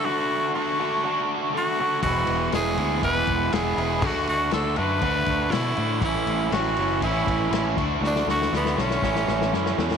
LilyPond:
<<
  \new Staff \with { instrumentName = "Tenor saxophone" } { \time 4/4 \key d \lydian \tempo 4 = 120 fis'4 fis'4. r8 fis'4 | fis'4 gis'4 b'4 gis'4 | fis'8 fis'8 a'8 b'4. e'4 | e'4 fis'4 e'4. r8 |
d'8 fis'8 b8 cis'2 r8 | }
  \new Staff \with { instrumentName = "Overdriven electric guitar" } { \time 4/4 \key d \lydian <d a d' fis'>4 <d a d' fis'>8 <d a d' fis'>8 <d a d' fis'>4 <d a d' fis'>8 <d a d' fis'>8 | <e gis b e'>4 <e gis b e'>8 <e gis b e'>8 <e gis b e'>4 <e gis b e'>8 <e gis b e'>8 | <d a d' fis'>4 <d a d' fis'>8 <d a d' fis'>8 <d a d' fis'>4 <d a d' fis'>8 <d a d' fis'>8 | <a, e a cis' e'>4 <a, e a cis' e'>8 <a, e a cis' e'>8 <a, e a cis' e'>4 <a, e a cis' e'>8 <d a d' fis'>8 |
<d a d' fis'>4 <d a d' fis'>8 <d a d' fis'>8 <a, e a cis' e'>4 <a, e a cis' e'>8 <a, e a cis' e'>8 | }
  \new Staff \with { instrumentName = "Fingered electric bass" } { \clef bass \time 4/4 \key d \lydian r1 | e,,8 e,,8 e,,8 d,8 e,,8 e,,8 e,,8 e,,8 | d,8 d,8 d,8 fis,8 d,8 d,8 b,8 a,8 | a,,8 a,,8 a,,8 fis,,8 a,,8 a,,8 a,,8 d,8 |
d,8 d,8 d,8 b,,8 a,,8 a,,8 fis,8 e,8 | }
  \new DrumStaff \with { instrumentName = "Drums" } \drummode { \time 4/4 r4 r4 r4 r4 | <cymc bd>8 cymc8 <cymc sn>8 cymc8 <cymc bd>8 <cymc bd>8 <cymc sn>8 cymc8 | <cymc bd>8 cymc8 <cymc sn>8 cymc8 <cymc bd>8 <cymc bd>8 <cymc sn>8 cymc8 | <cymc bd>8 cymc8 <cymc sn>8 cymc8 <cymc bd>8 <cymc bd>8 <cymc sn>8 <cymc bd>8 |
sn16 sn16 sn16 sn16 sn16 sn16 sn16 sn16 <bd sn>16 sn16 sn16 sn16 sn16 sn16 sn16 sn16 | }
>>